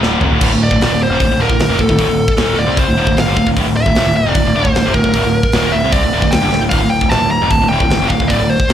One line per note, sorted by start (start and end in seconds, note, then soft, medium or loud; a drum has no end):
0.01 0.20 D1 medium
0.01 0.21 D2 loud
0.01 0.21 A2 medium
0.01 0.21 D3 loud
0.01 snare medium
0.21 0.30 F1 medium
0.21 0.31 F2 medium
0.21 0.32 C3 loud
0.21 floor tom medium
0.30 0.40 D1 medium
0.30 0.41 D2 medium
0.30 0.42 A2 loud
0.41 0.50 D1 medium
0.41 0.51 D2 medium
0.41 0.51 A2 loud
0.41 kick loud
0.41 crash loud
0.51 0.69 D1 medium
0.51 0.68 D2 medium
0.51 0.68 A2 medium
0.64 0.99 D5 medium
0.71 0.80 D1 medium
0.71 0.81 D2 medium
0.71 0.82 A2 medium
0.71 kick medium
0.80 0.90 D#1 medium
0.80 0.91 D#2 medium
0.80 0.91 A#2 loud
0.80 snare loud
0.80 open hi-hat soft
0.90 1.08 D1 medium
0.90 1.07 D2 medium
0.90 1.08 A2 medium
1.03 1.39 C5 medium
1.09 1.19 F1 medium
1.09 1.20 F2 medium
1.09 1.21 C3 medium
1.20 1.29 D1 medium
1.20 1.30 D2 medium
1.20 1.31 A2 medium
1.20 kick loud
1.20 open hi-hat medium
1.29 1.37 D1 medium
1.29 1.39 D2 medium
1.29 1.40 A2 medium
1.38 1.48 D1 loud
1.38 1.48 D2 medium
1.38 1.49 A2 medium
1.42 1.81 A#4 medium
1.50 1.57 D1 medium
1.50 1.59 D2 medium
1.50 1.59 A2 medium
1.50 kick medium
1.58 1.68 D1 medium
1.58 1.69 D2 medium
1.58 1.69 A2 medium
1.58 snare loud
1.58 open hi-hat medium
1.68 1.78 F1 medium
1.68 1.79 F2 medium
1.68 1.79 C3 medium
1.79 1.88 D1 medium
1.79 1.88 D2 medium
1.79 1.88 A2 medium
1.79 2.61 A4 medium
1.79 kick medium
1.89 1.98 D1 medium
1.89 1.97 D2 medium
1.89 1.98 A2 medium
1.89 kick medium
1.98 2.07 D1 medium
1.98 2.07 D2 medium
1.98 2.07 A2 medium
1.98 kick medium
1.98 open hi-hat medium
2.08 2.27 D1 medium
2.08 2.24 D2 medium
2.08 2.25 A2 medium
2.28 kick medium
2.37 2.56 D#1 medium
2.37 2.57 D#2 medium
2.37 2.57 A#2 medium
2.37 2.57 D#3 medium
2.37 snare loud
2.37 open hi-hat medium
2.57 2.67 D1 medium
2.57 2.66 D2 medium
2.57 2.66 A2 medium
2.57 2.78 D5 medium
2.66 2.86 C2 medium
2.66 2.86 C3 medium
2.66 2.87 G3 medium
2.66 2.87 C4 loud
2.77 3.15 C5 medium
2.77 kick loud
2.77 open hi-hat medium
2.87 2.97 D1 medium
2.87 2.96 D2 medium
2.87 2.96 A2 medium
2.97 3.07 D1 medium
2.97 3.05 D2 medium
2.97 3.06 A2 medium
3.06 3.16 D1 medium
3.06 3.16 D2 medium
3.06 3.16 A2 medium
3.06 kick medium
3.17 3.26 D1 medium
3.17 3.26 D2 medium
3.17 3.26 A2 medium
3.17 3.46 F5 medium
3.17 snare loud
3.17 open hi-hat medium
3.26 3.36 G1 medium
3.26 3.36 G2 medium
3.26 3.36 D3 loud
3.37 3.46 D1 medium
3.37 3.46 D2 medium
3.37 3.47 A2 medium
3.37 kick medium
3.47 3.56 D1 medium
3.47 3.55 D2 medium
3.47 3.56 A2 medium
3.47 kick medium
3.57 3.65 D1 medium
3.57 3.66 D2 medium
3.57 3.66 A2 loud
3.57 kick medium
3.57 open hi-hat medium
3.66 3.84 D1 medium
3.66 3.83 D2 medium
3.66 3.83 A2 medium
3.77 4.13 E5 loud
3.86 3.94 D1 medium
3.86 3.96 D2 medium
3.86 3.96 A2 medium
3.86 kick medium
3.95 4.04 D#1 medium
3.95 4.06 D#2 medium
3.95 4.06 A#2 loud
3.95 snare loud
3.95 open hi-hat medium
4.05 4.24 D1 medium
4.05 4.22 D2 medium
4.05 4.23 A2 medium
4.17 4.53 D5 medium
4.25 4.35 F1 medium
4.25 4.35 F2 medium
4.25 4.36 C3 loud
4.35 4.45 D1 medium
4.35 4.45 D2 medium
4.35 4.46 A2 medium
4.35 kick loud
4.35 open hi-hat soft
4.46 4.55 D1 medium
4.46 4.55 D2 medium
4.46 4.55 A2 medium
4.55 4.64 D1 medium
4.55 4.65 D2 medium
4.55 4.65 A2 loud
4.55 4.94 C5 medium
4.64 4.74 D1 medium
4.64 4.75 D2 medium
4.64 4.76 A2 medium
4.64 kick medium
4.75 4.84 D1 medium
4.75 4.85 D2 medium
4.75 4.85 A2 medium
4.75 snare loud
4.75 open hi-hat medium
4.85 4.94 F1 medium
4.85 4.95 F2 medium
4.85 4.95 C3 loud
4.94 5.04 D1 medium
4.94 5.04 D2 medium
4.94 5.04 A2 medium
4.94 5.76 A#4 medium
4.94 kick medium
5.04 5.14 D1 medium
5.04 5.14 D2 medium
5.04 5.14 A2 medium
5.04 kick medium
5.13 5.24 D1 medium
5.13 5.24 D2 medium
5.13 5.24 A2 medium
5.13 kick medium
5.13 open hi-hat medium
5.25 5.43 D1 medium
5.25 5.41 D2 medium
5.25 5.41 A2 medium
5.43 kick medium
5.52 5.73 D#1 medium
5.52 5.73 D#2 medium
5.52 5.74 A#2 medium
5.52 5.74 D#3 loud
5.52 snare loud
5.52 open hi-hat medium
5.72 5.83 D1 medium
5.72 5.84 D2 medium
5.72 5.84 A2 medium
5.72 5.93 E5 medium
5.84 6.02 C2 medium
5.84 6.03 C3 medium
5.84 6.03 G3 medium
5.84 6.03 C4 medium
5.92 6.34 D5 loud
5.92 kick loud
5.92 open hi-hat medium
6.02 6.12 D1 medium
6.02 6.11 D2 medium
6.02 6.12 A2 medium
6.13 6.22 D1 medium
6.13 6.21 D2 medium
6.13 6.22 A2 medium
6.22 6.32 D1 medium
6.22 6.32 D2 medium
6.22 6.32 A2 medium
6.22 kick medium
6.31 6.42 D1 medium
6.31 6.41 D2 medium
6.31 6.42 A2 medium
6.31 6.59 G5 medium
6.31 snare loud
6.31 open hi-hat medium
6.42 6.52 G1 medium
6.42 6.51 G2 medium
6.42 6.52 D3 medium
6.52 6.61 D1 medium
6.52 6.61 D2 medium
6.52 6.61 A2 medium
6.52 snare medium
6.61 6.71 D1 medium
6.61 6.70 D2 medium
6.61 6.71 A2 medium
6.70 6.80 D1 medium
6.70 6.80 D2 medium
6.70 6.81 A2 medium
6.70 6.89 F5 loud
6.70 kick loud
6.70 open hi-hat medium
6.70 splash medium
6.81 7.00 D1 medium
6.81 6.98 D2 medium
6.81 6.98 A2 medium
6.89 7.09 G5 medium
7.01 7.10 D1 medium
7.01 7.12 D2 medium
7.01 7.11 A2 medium
7.01 kick medium
7.09 7.21 D#1 medium
7.09 7.21 D#2 medium
7.09 7.21 A#2 loud
7.09 7.31 A5 medium
7.09 snare loud
7.09 open hi-hat medium
7.22 7.40 D1 medium
7.22 7.38 D2 medium
7.22 7.38 A2 medium
7.31 7.50 A#5 medium
7.42 7.50 F1 medium
7.42 7.51 F2 medium
7.42 7.51 C3 loud
7.50 7.60 D1 medium
7.50 7.61 D2 medium
7.50 7.61 A2 medium
7.50 7.69 A5 loud
7.50 kick loud
7.50 open hi-hat soft
7.62 7.69 D1 medium
7.62 7.71 D2 medium
7.62 7.71 A2 medium
7.69 7.79 D1 medium
7.69 7.81 D2 medium
7.69 7.81 A2 medium
7.69 8.11 G5 loud
7.80 7.88 D1 medium
7.80 7.92 D2 medium
7.80 7.92 A2 medium
7.80 kick medium
7.88 7.98 D1 medium
7.88 snare loud
7.88 open hi-hat medium
7.93 8.01 D2 medium
7.93 8.01 A2 medium
7.99 8.09 F1 medium
7.99 8.10 F2 medium
7.99 8.10 C3 loud
8.08 8.20 D1 medium
8.08 8.20 D2 medium
8.08 8.21 A2 medium
8.08 8.30 F5 medium
8.08 kick medium
8.20 8.29 D1 medium
8.20 8.30 D2 medium
8.20 8.31 A2 medium
8.20 kick medium
8.28 8.37 D1 medium
8.28 8.40 D2 medium
8.28 8.40 A2 medium
8.28 8.50 D5 loud
8.28 kick medium
8.28 open hi-hat medium
8.37 8.57 D1 medium
8.42 8.57 D2 medium
8.42 8.57 A2 medium
8.50 8.73 C5 medium
8.60 kick medium
8.69 8.73 D#1 medium
8.69 snare loud
8.69 open hi-hat medium